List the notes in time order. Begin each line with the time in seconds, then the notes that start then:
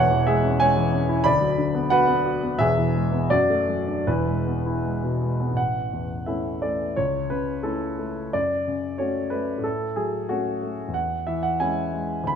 Already playing: E1 E2 C#5 F#5
0.11 E3
0.27 G#3 G#4 E5
0.44 C#4
0.60 G#3 C#5 G#5
0.77 E3
0.93 C#4
1.09 E4
1.24 D2 D5 B5
1.41 F#3
1.58 D3
1.75 B3
1.90 F#4 B4 F#5
2.08 B3
2.26 F#4
2.43 B3
2.59 E1 E2 G#4 E5
2.78 E3
2.95 G#3
3.12 B3
3.30 F#2 F#4 D5
3.50 A3
3.69 F#3
3.88 D4
4.07 E1 E2 E4 B4
4.28 G#3
4.47 B3
4.66 E4
4.85 G#3
5.04 B2
5.21 G#3
5.40 B3
5.51 A1
5.57 F#5
5.93 E2
6.26 A3 C#4 E4 E5
6.62 A3 D5
6.96 C#2 C#5
7.30 C#3 B4
7.63 A3 C#4 E4 A4
7.99 A3
8.33 F#2 D5
8.68 C#3
8.98 A3 C#4 F#4 C#5
9.30 A3 B4
9.58 A2
9.64 A4
9.96 F#3 G#4
10.29 A3 C#4 F#4
10.62 A3
10.88 E2
10.94 F#5
11.27 E3 E5
11.43 F#5
11.60 G#3 C#4 E4 G#5
11.93 G#3
12.24 D2 B5